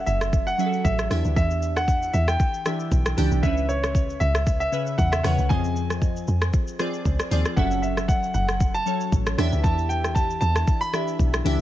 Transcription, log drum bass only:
0.07 0.53 F#1 loud
0.85 1.08 A1 loud
1.11 1.23 E2 loud
1.25 1.35 D2 medium
1.36 2.10 E2 loud
2.14 2.37 E2 loud
2.92 3.15 B1 loud
3.18 3.30 C#2 loud
3.32 3.42 B1 medium
3.43 4.17 C#2 loud
4.21 4.67 C#2 loud
4.99 5.22 E2 loud
5.24 5.37 E2 loud
5.39 5.49 C#2 medium
5.50 6.24 F2 loud
6.28 6.51 F2 loud
7.05 7.18 C#2 loud
7.31 7.44 D#2 medium
7.57 8.31 F#1 loud
8.35 8.81 F#1 loud
9.12 9.35 A1 loud
9.38 9.51 E2 loud
9.53 9.63 D2 medium
9.64 10.38 E2 loud
10.42 10.65 E2 loud
11.19 11.42 B1 loud
11.45 11.58 C#2 loud

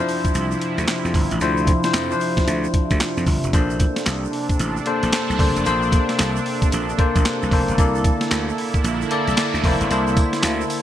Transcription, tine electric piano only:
0.00 1.41 F3 medium
0.00 1.41 D4 medium
0.00 1.41 E4 medium
0.00 1.42 C5 loud
1.41 1.75 F3 medium
1.41 1.75 D4 medium
1.41 1.75 E4 medium
1.41 1.75 C5 loud
1.84 2.04 F3 medium
1.84 2.04 D4 medium
1.84 2.05 E4 medium
1.84 2.05 C5 medium
2.11 2.95 F3 medium
2.11 2.95 D4 medium
2.11 2.95 E4 medium
2.11 2.96 C5 medium
3.53 4.40 A#3 medium
3.53 4.41 D4 medium
3.53 4.41 A4 medium
3.53 4.41 C5 medium
4.86 5.32 A#3 medium
4.86 5.32 D4 medium
4.86 5.32 A4 medium
4.86 5.32 C5 loud
5.39 5.62 A#3 medium
5.39 5.62 D4 medium
5.39 5.62 A4 medium
5.39 5.62 C5 medium
5.66 6.53 A#3 medium
5.66 6.53 D4 medium
5.66 6.53 A4 medium
5.66 6.53 C5 loud
6.98 7.44 A#3 medium
6.98 7.44 D4 medium
6.98 7.44 A4 medium
6.98 7.44 C5 medium
7.52 7.74 A#3 medium
7.52 7.75 D4 medium
7.52 7.75 A4 medium
7.52 7.75 C5 medium
7.78 8.65 A#3 medium
7.78 8.66 E4 medium
7.78 8.66 A4 medium
7.78 8.66 D5 medium
9.11 9.56 A#3 medium
9.11 9.56 E4 medium
9.11 9.57 A4 medium
9.11 9.57 D5 loud
9.65 9.87 A#3 medium
9.65 9.87 E4 medium
9.65 9.87 A4 medium
9.65 9.88 C5 medium
9.90 10.78 A#3 medium
9.90 10.78 E4 medium
9.90 10.78 A4 medium
9.90 10.78 C5 medium

